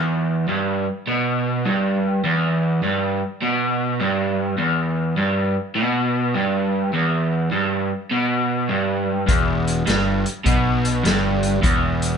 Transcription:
0, 0, Header, 1, 4, 480
1, 0, Start_track
1, 0, Key_signature, 1, "minor"
1, 0, Tempo, 587659
1, 1830, Time_signature, 4, 2, 24, 8
1, 9945, End_track
2, 0, Start_track
2, 0, Title_t, "Overdriven electric guitar"
2, 0, Program_c, 0, 29
2, 0, Note_on_c, 0, 40, 93
2, 383, Note_off_c, 0, 40, 0
2, 397, Note_on_c, 0, 43, 95
2, 699, Note_off_c, 0, 43, 0
2, 878, Note_on_c, 0, 47, 92
2, 1349, Note_off_c, 0, 47, 0
2, 1354, Note_on_c, 0, 43, 97
2, 1827, Note_off_c, 0, 43, 0
2, 1832, Note_on_c, 0, 40, 101
2, 2306, Note_off_c, 0, 40, 0
2, 2312, Note_on_c, 0, 43, 95
2, 2616, Note_off_c, 0, 43, 0
2, 2796, Note_on_c, 0, 47, 95
2, 3268, Note_off_c, 0, 47, 0
2, 3272, Note_on_c, 0, 43, 107
2, 3737, Note_off_c, 0, 43, 0
2, 3740, Note_on_c, 0, 40, 92
2, 4219, Note_off_c, 0, 40, 0
2, 4223, Note_on_c, 0, 43, 94
2, 4532, Note_off_c, 0, 43, 0
2, 4698, Note_on_c, 0, 47, 95
2, 5178, Note_off_c, 0, 47, 0
2, 5181, Note_on_c, 0, 43, 106
2, 5657, Note_off_c, 0, 43, 0
2, 5660, Note_on_c, 0, 40, 95
2, 6136, Note_off_c, 0, 40, 0
2, 6139, Note_on_c, 0, 43, 96
2, 6449, Note_off_c, 0, 43, 0
2, 6627, Note_on_c, 0, 47, 94
2, 7099, Note_on_c, 0, 43, 97
2, 7103, Note_off_c, 0, 47, 0
2, 7570, Note_off_c, 0, 43, 0
2, 7573, Note_on_c, 0, 40, 98
2, 8050, Note_off_c, 0, 40, 0
2, 8054, Note_on_c, 0, 43, 97
2, 8367, Note_off_c, 0, 43, 0
2, 8539, Note_on_c, 0, 47, 98
2, 9013, Note_on_c, 0, 43, 101
2, 9019, Note_off_c, 0, 47, 0
2, 9487, Note_off_c, 0, 43, 0
2, 9490, Note_on_c, 0, 40, 102
2, 9945, Note_off_c, 0, 40, 0
2, 9945, End_track
3, 0, Start_track
3, 0, Title_t, "Fingered electric bass"
3, 0, Program_c, 1, 33
3, 7584, Note_on_c, 1, 28, 76
3, 8033, Note_off_c, 1, 28, 0
3, 8068, Note_on_c, 1, 31, 78
3, 8361, Note_off_c, 1, 31, 0
3, 8545, Note_on_c, 1, 35, 84
3, 8994, Note_off_c, 1, 35, 0
3, 9023, Note_on_c, 1, 31, 83
3, 9473, Note_off_c, 1, 31, 0
3, 9504, Note_on_c, 1, 28, 85
3, 9945, Note_off_c, 1, 28, 0
3, 9945, End_track
4, 0, Start_track
4, 0, Title_t, "Drums"
4, 7584, Note_on_c, 9, 42, 80
4, 7585, Note_on_c, 9, 36, 100
4, 7666, Note_off_c, 9, 36, 0
4, 7666, Note_off_c, 9, 42, 0
4, 7902, Note_on_c, 9, 42, 58
4, 7983, Note_off_c, 9, 42, 0
4, 8061, Note_on_c, 9, 42, 75
4, 8071, Note_on_c, 9, 38, 95
4, 8143, Note_off_c, 9, 42, 0
4, 8152, Note_off_c, 9, 38, 0
4, 8379, Note_on_c, 9, 42, 59
4, 8461, Note_off_c, 9, 42, 0
4, 8543, Note_on_c, 9, 36, 95
4, 8543, Note_on_c, 9, 42, 81
4, 8624, Note_off_c, 9, 42, 0
4, 8625, Note_off_c, 9, 36, 0
4, 8861, Note_on_c, 9, 42, 62
4, 8942, Note_off_c, 9, 42, 0
4, 9026, Note_on_c, 9, 42, 83
4, 9036, Note_on_c, 9, 38, 106
4, 9108, Note_off_c, 9, 42, 0
4, 9118, Note_off_c, 9, 38, 0
4, 9335, Note_on_c, 9, 42, 58
4, 9417, Note_off_c, 9, 42, 0
4, 9502, Note_on_c, 9, 36, 99
4, 9506, Note_on_c, 9, 42, 75
4, 9584, Note_off_c, 9, 36, 0
4, 9587, Note_off_c, 9, 42, 0
4, 9819, Note_on_c, 9, 42, 62
4, 9901, Note_off_c, 9, 42, 0
4, 9945, End_track
0, 0, End_of_file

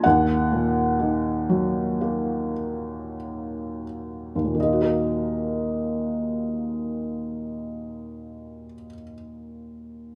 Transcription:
0, 0, Header, 1, 2, 480
1, 0, Start_track
1, 0, Key_signature, -6, "minor"
1, 0, Tempo, 930233
1, 24, Time_signature, 4, 2, 24, 8
1, 504, Tempo, 1015228
1, 984, Tempo, 1190476
1, 1464, Tempo, 1392111
1, 3384, Tempo, 1459854
1, 3844, End_track
2, 0, Start_track
2, 0, Title_t, "Felt piano"
2, 0, Program_c, 0, 0
2, 0, Control_c, 0, 64, 127
2, 18, Note_on_c, 0, 78, 67
2, 29, Note_on_c, 0, 39, 54
2, 31, Control_c, 0, 64, 0
2, 127, Control_c, 0, 64, 127
2, 268, Note_on_c, 0, 46, 35
2, 513, Note_on_c, 0, 51, 37
2, 749, Note_on_c, 0, 54, 35
2, 992, Note_on_c, 0, 58, 35
2, 1200, Note_off_c, 0, 46, 0
2, 1453, Note_off_c, 0, 51, 0
2, 1683, Note_off_c, 0, 78, 0
2, 1689, Note_off_c, 0, 54, 0
2, 1863, Note_off_c, 0, 39, 0
2, 1868, Note_on_c, 0, 39, 28
2, 1899, Note_on_c, 0, 46, 26
2, 1934, Note_on_c, 0, 51, 27
2, 1935, Note_off_c, 0, 58, 0
2, 1950, Control_c, 0, 64, 0
2, 1953, Note_on_c, 0, 75, 36
2, 1964, Note_on_c, 0, 58, 25
2, 1997, Note_on_c, 0, 66, 25
2, 2018, Control_c, 0, 64, 127
2, 2028, Note_on_c, 0, 70, 30
2, 3350, Note_off_c, 0, 39, 0
2, 3381, Note_off_c, 0, 46, 0
2, 3414, Note_off_c, 0, 51, 0
2, 3433, Note_off_c, 0, 75, 0
2, 3443, Note_off_c, 0, 58, 0
2, 3474, Note_off_c, 0, 66, 0
2, 3504, Note_off_c, 0, 70, 0
2, 3844, End_track
0, 0, End_of_file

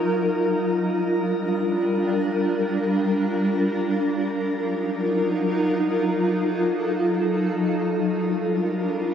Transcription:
0, 0, Header, 1, 2, 480
1, 0, Start_track
1, 0, Key_signature, -2, "major"
1, 0, Tempo, 500000
1, 8777, End_track
2, 0, Start_track
2, 0, Title_t, "Ambient pad"
2, 0, Program_c, 0, 92
2, 0, Note_on_c, 0, 54, 78
2, 0, Note_on_c, 0, 63, 73
2, 0, Note_on_c, 0, 65, 74
2, 0, Note_on_c, 0, 70, 90
2, 363, Note_off_c, 0, 63, 0
2, 364, Note_off_c, 0, 54, 0
2, 399, Note_on_c, 0, 55, 83
2, 399, Note_on_c, 0, 62, 73
2, 3851, Note_off_c, 0, 65, 0
2, 3851, Note_off_c, 0, 70, 0
2, 3854, Note_off_c, 0, 55, 0
2, 3854, Note_off_c, 0, 62, 0
2, 3891, Note_on_c, 0, 54, 81
2, 3891, Note_on_c, 0, 63, 74
2, 3891, Note_on_c, 0, 65, 71
2, 3891, Note_on_c, 0, 70, 88
2, 5618, Note_off_c, 0, 70, 0
2, 5635, Note_on_c, 0, 69, 88
2, 7346, Note_off_c, 0, 54, 0
2, 7346, Note_off_c, 0, 63, 0
2, 7346, Note_off_c, 0, 65, 0
2, 7363, Note_off_c, 0, 69, 0
2, 7380, Note_on_c, 0, 65, 75
2, 7381, Note_on_c, 0, 55, 80
2, 7381, Note_on_c, 0, 62, 79
2, 7381, Note_on_c, 0, 70, 88
2, 8777, Note_off_c, 0, 55, 0
2, 8777, Note_off_c, 0, 62, 0
2, 8777, Note_off_c, 0, 65, 0
2, 8777, Note_off_c, 0, 70, 0
2, 8777, End_track
0, 0, End_of_file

